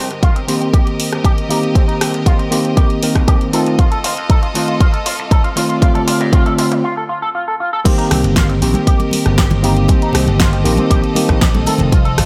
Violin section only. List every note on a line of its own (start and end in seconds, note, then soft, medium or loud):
0.00 6.80 C4 medium
0.00 3.50 G4 medium
0.00 3.50 A#4 medium
0.00 3.50 D#5 medium
3.54 6.81 F4 medium
3.54 5.80 A4 medium
3.54 5.80 D#5 medium
5.82 6.83 G4 medium
5.82 6.83 D5 medium
7.86 11.63 C4 medium
7.86 11.63 G4 medium
7.86 9.87 A#4 medium
7.86 12.25 D#5 medium
9.88 12.25 A4 medium
11.67 12.25 C4 medium
11.67 12.25 F4 medium